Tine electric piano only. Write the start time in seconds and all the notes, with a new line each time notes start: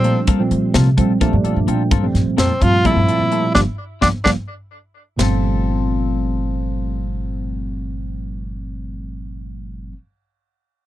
Already playing: A#2 F3 G3 A3 D4
0.39 A#2 F3 G3 A3 C4
0.97 A#2 F3 G3 A3 C4
1.21 A#2 F3 G3 A3 D4
1.46 D5
1.69 G5
2.03 A#2 F3 G3 A3 C4
2.62 A#2 F3 G3 A3 C4
2.84 A#2 F3 G3 A3 C4
3.55 F3 G3 A#3
4.01 F3 G3 A#3
4.25 F3 G3 A#3
5.17 A#2 F3 G3 A3
5.21 C4